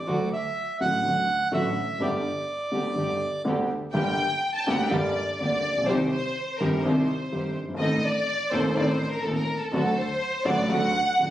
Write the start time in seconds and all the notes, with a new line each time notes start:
Already playing: D5
0.07 D2 D3 F#3 A3 D4 F#4
0.33 E5
0.79 A1 A2 D3 F#3 A3 D4 F#4 F#5
1.03 D2 D3 F#3 A3 D4 F#4
1.51 A1 A2 D3 F#3 A3 D4 F#4 E5
1.99 G1 G2 D3 G3 B3 D4 G4 D5
2.71 D2 D3 G3 B3 D4 G4
2.95 G1 G2 D3 G3 B3 D4 G4
3.44 D2 D3 G3 B3 D4 G4
3.94 G1 G2 D3 G3 A#3 D4 G4 G5
4.55 A5
4.63 D2 D3 G3 G5
4.67 D2 A#3 D4 G4
4.72 F#5
4.81 G5
4.91 G1 G2 D3 G3 A#3 D4 G4 D5
5.39 D2 D3 G3 A#3 D4 G4 D5
5.64 A#1
5.72 A1
5.78 A#1
5.84 B1 C5
5.88 C2 C3 D#3 G3 C4 D#4 G4
6.12 C5
6.58 G1 G2 D#3 G3 C4 D#4 G4 A#4
6.83 C2 C3 D#3 G3 C4 D#4 G4 C5
7.32 G1 G2 D#3 G3 C4 D#4 G4
7.56 G1
7.63 F#1
7.68 G1
7.74 G#1
7.79 A1 A2 D#3 A3 C4 D#4 A4 D#5
8.04 D5
8.51 D#1 D#2 D#3 A3 C4 D#4 A4 C5
8.76 A1 A2 D#3 A3 C4 D#4 A4 D5
8.87 C5
9.11 A#4
9.23 D#1 D#2 D#3 A3 C4 D#4 A4
9.35 A#4
9.59 A4
9.72 D2 D3 F#3 A3 D4 F#4 A4
9.99 C5
10.45 A1 A2 D3 F#3 A3 D4 F#4 D5
10.69 D2 D3 F#3 A3 D4 F#4 F#5
11.19 A1 A2 D3 F#3 A3 D4 F#4